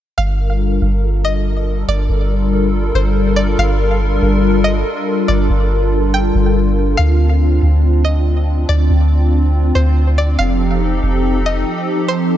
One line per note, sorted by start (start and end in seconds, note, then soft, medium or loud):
0.18 0.79 G1 loud
0.18 6.95 G3 medium
0.18 10.35 D4 medium
0.18 10.35 F4 medium
0.18 6.95 A4 medium
0.18 6.95 A#4 medium
0.18 0.58 F5 loud
0.82 1.84 G1 loud
1.25 1.45 D#5 medium
1.88 2.09 G1 loud
1.88 2.28 D5 loud
2.09 2.91 G1 loud
2.95 3.56 G1 loud
2.95 3.35 C5 medium
3.36 3.57 D5 medium
3.58 4.20 G1 loud
3.58 3.99 F5 loud
4.22 4.83 G1 loud
4.64 4.85 D#5 medium
5.28 5.49 G1 loud
5.28 5.68 D5 loud
5.50 6.32 G1 loud
6.14 6.95 G5 medium
6.35 6.96 G1 loud
6.97 7.60 D2 loud
6.97 12.37 C4 medium
6.97 7.38 F5 loud
7.63 8.65 D2 medium
8.05 8.25 D#5 medium
8.69 8.89 D2 loud
8.69 9.09 D5 loud
8.90 9.72 D2 loud
9.75 10.37 D2 loud
9.75 10.15 C5 medium
10.18 10.38 D5 medium
10.39 11.01 F1 loud
10.39 12.37 F3 medium
10.39 12.37 D#4 medium
10.39 12.37 G4 medium
10.39 12.37 A4 medium
10.39 10.79 F5 loud
11.03 11.64 F1 loud
11.46 11.66 D#5 medium
12.08 12.37 C5 loud